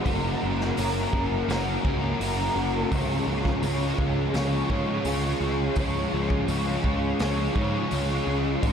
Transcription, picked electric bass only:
0.06 0.34 F#1 loud
0.43 0.70 F#1 medium
0.78 1.05 F#1 medium
1.13 1.41 F#1 loud
1.48 1.76 F#1 medium
1.85 2.12 C#2 medium
2.20 2.48 F#1 medium
2.56 2.84 F#1 medium
2.92 3.19 C#2 medium
3.27 3.55 C#2 medium
3.63 3.90 C#2 medium
3.99 4.26 C#2 medium
4.34 4.62 C#2 medium
4.70 4.98 G#2 medium
5.05 5.33 C#2 medium
5.41 5.69 C#2 medium
5.76 6.04 C#2 medium
6.13 6.41 C#2 medium
6.48 6.76 C#2 loud
6.84 7.12 C#2 loud
7.20 7.48 C#2 loud
7.56 7.83 G#2 medium
7.92 8.19 C#2 medium
8.27 8.55 C#2 medium
8.63 8.72 G#1 medium

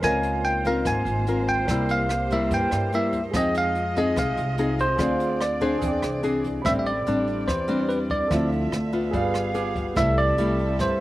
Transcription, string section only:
0.02 3.30 A#3 medium
0.02 1.66 D#4 medium
0.02 1.66 F4 medium
0.02 3.30 C5 medium
1.69 3.33 G4 medium
3.32 4.97 G#3 medium
3.32 5.79 F4 medium
3.32 4.97 D#5 medium
4.98 6.63 C4 medium
4.98 6.63 D5 medium
5.82 6.64 G#4 medium
6.64 9.11 C4 medium
6.64 8.29 G4 medium
6.64 8.29 D5 medium
8.31 9.13 D4 medium
8.31 9.13 E5 medium
9.13 9.96 B3 medium
9.13 9.95 G#4 medium
9.13 9.96 F5 medium
9.98 11.00 C4 medium
9.98 11.00 A4 medium
9.98 11.00 E5 medium

